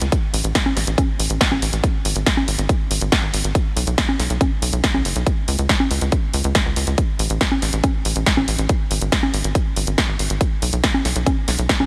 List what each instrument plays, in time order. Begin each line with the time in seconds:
0.01 analog synth bass C#2, closed hi-hat
0.12 kick, closed hi-hat
0.33 analog synth bass A1, open hi-hat
0.44 analog synth bass A1, closed hi-hat
0.55 kick, snare, closed hi-hat
0.66 high conga
0.76 analog synth bass A1, snare, open hi-hat
0.87 analog synth bass A1, closed hi-hat
0.98 kick, closed hi-hat, high conga
1.19 analog synth bass A1, open hi-hat
1.30 analog synth bass A1, closed hi-hat
1.41 kick, snare, closed hi-hat
1.51 analog synth bass A1, high conga
1.62 analog synth bass A1, open hi-hat
1.73 analog synth bass A1, closed hi-hat
1.84 kick, closed hi-hat
2.05 analog synth bass G#1, open hi-hat
2.16 analog synth bass G#1, closed hi-hat
2.26 kick, snare, closed hi-hat
2.37 high conga
2.48 analog synth bass G#1, open hi-hat
2.58 analog synth bass G#1, closed hi-hat
2.69 kick, closed hi-hat
2.91 analog synth bass G#1, open hi-hat
3.01 analog synth bass G#1, closed hi-hat
3.12 kick, snare, closed hi-hat
3.23 analog synth bass G#1
3.34 analog synth bass G#1, open hi-hat
3.44 analog synth bass G#1, closed hi-hat
3.55 kick, closed hi-hat
3.76 analog synth bass B1, open hi-hat
3.87 analog synth bass B1, closed hi-hat
3.98 kick, snare, closed hi-hat
4.09 high conga
4.19 analog synth bass B1, snare, open hi-hat
4.30 analog synth bass B1, closed hi-hat
4.41 kick, closed hi-hat, high conga
4.62 analog synth bass B1, open hi-hat
4.73 analog synth bass B1, closed hi-hat
4.84 kick, snare, closed hi-hat
4.94 analog synth bass B1, high conga
5.05 analog synth bass F#1, open hi-hat
5.16 analog synth bass B1, closed hi-hat
5.27 kick, closed hi-hat
5.48 analog synth bass C#2, open hi-hat
5.59 analog synth bass C#2, closed hi-hat
5.69 kick, snare, closed hi-hat
5.80 high conga
5.91 analog synth bass C#2, open hi-hat
6.01 analog synth bass C#2, closed hi-hat
6.12 kick, closed hi-hat
6.33 analog synth bass C#2, open hi-hat
6.44 analog synth bass C#2, closed hi-hat
6.55 kick, snare, closed hi-hat
6.66 analog synth bass C#2
6.76 analog synth bass C#2, open hi-hat
6.87 analog synth bass C#2, closed hi-hat
6.98 kick, closed hi-hat
7.19 analog synth bass A1, open hi-hat
7.30 analog synth bass A1, closed hi-hat
7.41 kick, snare, closed hi-hat
7.52 high conga
7.62 analog synth bass A1, snare, open hi-hat
7.73 analog synth bass A1, closed hi-hat
7.84 kick, closed hi-hat, high conga
8.05 analog synth bass A1, open hi-hat
8.16 analog synth bass A1, closed hi-hat
8.26 kick, snare, closed hi-hat
8.37 analog synth bass A1, high conga
8.48 analog synth bass A1, open hi-hat
8.58 analog synth bass A1, closed hi-hat
8.69 kick, closed hi-hat
8.91 analog synth bass G#1, open hi-hat
9.01 analog synth bass G#1, closed hi-hat
9.12 kick, snare, closed hi-hat
9.23 high conga
9.34 analog synth bass G#1, open hi-hat
9.44 analog synth bass G#1, closed hi-hat
9.55 kick, closed hi-hat
9.76 analog synth bass G#1, open hi-hat
9.87 analog synth bass G#1, closed hi-hat
9.98 kick, snare, closed hi-hat
10.09 analog synth bass G#1
10.19 analog synth bass G#1, open hi-hat
10.30 analog synth bass G#1, closed hi-hat
10.41 kick, closed hi-hat
10.62 analog synth bass B1, open hi-hat
10.73 analog synth bass B1, closed hi-hat
10.84 kick, snare, closed hi-hat
10.94 high conga
11.05 analog synth bass B1, snare, open hi-hat
11.16 analog synth bass B1, closed hi-hat
11.26 kick, closed hi-hat, high conga
11.48 analog synth bass B1, snare, open hi-hat
11.59 analog synth bass B1, closed hi-hat
11.69 kick, snare, closed hi-hat
11.80 analog synth bass B1, high conga